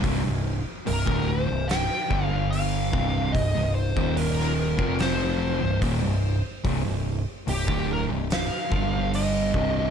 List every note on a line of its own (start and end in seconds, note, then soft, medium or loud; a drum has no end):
0.03 0.23 C1 medium
0.03 0.23 C2 medium
0.03 0.23 G2 loud
0.03 kick loud
0.03 open hi-hat medium
0.24 0.64 C1 medium
0.24 0.57 C2 medium
0.24 0.57 G2 medium
0.86 1.07 C1 medium
0.86 1.05 C2 medium
0.86 1.07 G2 medium
0.86 1.25 A#4 medium
0.86 open hi-hat medium
1.06 1.46 D1 medium
1.06 1.47 D2 medium
1.06 1.47 A2 medium
1.06 1.48 D3 medium
1.06 kick loud
1.27 1.70 C5 medium
1.48 1.88 C1 medium
1.48 1.81 C2 medium
1.48 1.82 G2 medium
1.68 2.25 G5 loud
1.68 snare loud
1.68 open hi-hat medium
2.10 2.89 G1 medium
2.10 2.92 G2 medium
2.10 2.92 D3 medium
2.10 2.92 G3 medium
2.10 kick loud
2.25 2.47 F5 loud
2.51 3.36 F5 loud
2.51 open hi-hat medium
2.92 3.32 C1 medium
2.92 3.33 C2 medium
2.92 3.33 G2 medium
2.92 3.34 C3 medium
2.92 kick loud
3.32 3.54 C1 medium
3.32 3.54 C2 medium
3.32 3.54 G2 medium
3.32 3.75 D#5 loud
3.32 kick medium
3.32 open hi-hat medium
3.55 3.94 C1 medium
3.55 3.88 C2 medium
3.55 3.88 G2 medium
3.75 4.18 C5 medium
3.96 4.75 D#1 loud
3.96 4.78 D#2 medium
3.96 4.78 A#2 medium
3.96 4.78 D#3 loud
3.96 kick loud
4.17 4.96 A#4 medium
4.17 open hi-hat medium
4.39 snare soft
4.78 5.57 F1 medium
4.78 5.60 F2 medium
4.78 5.60 C3 medium
4.78 5.61 F3 medium
4.78 kick loud
4.99 5.79 C5 medium
4.99 snare loud
4.99 open hi-hat medium
5.62 5.82 C1 medium
5.62 5.81 C2 medium
5.62 5.82 G2 medium
5.81 6.01 D#1 medium
5.81 6.01 D#2 medium
5.81 6.02 A#2 loud
5.81 kick loud
5.81 open hi-hat medium
6.02 6.41 C1 medium
6.02 6.36 C2 medium
6.02 6.36 G2 medium
6.64 6.84 C1 loud
6.64 6.83 C2 loud
6.64 6.83 G2 loud
6.64 kick loud
6.64 open hi-hat medium
6.84 7.24 C1 medium
6.84 7.18 C2 medium
6.84 7.18 G2 medium
7.47 7.67 C1 medium
7.47 7.67 C2 medium
7.47 7.68 G2 medium
7.47 7.91 G4 medium
7.47 open hi-hat medium
7.67 8.07 D1 medium
7.67 8.08 D2 medium
7.67 8.08 A2 medium
7.67 8.09 D3 medium
7.67 kick loud
7.93 8.03 A#4 medium
8.09 8.48 C1 medium
8.09 8.42 C2 medium
8.09 8.43 G2 medium
8.30 9.11 F5 loud
8.30 snare loud
8.30 open hi-hat medium
8.70 9.50 G1 medium
8.70 9.52 G2 medium
8.70 9.53 D3 medium
8.70 9.53 G3 medium
8.70 kick loud
9.14 9.90 D#5 loud
9.14 open hi-hat medium
9.54 9.90 C1 medium
9.54 9.90 C2 medium
9.54 9.90 G2 medium
9.54 9.90 C3 medium
9.54 kick loud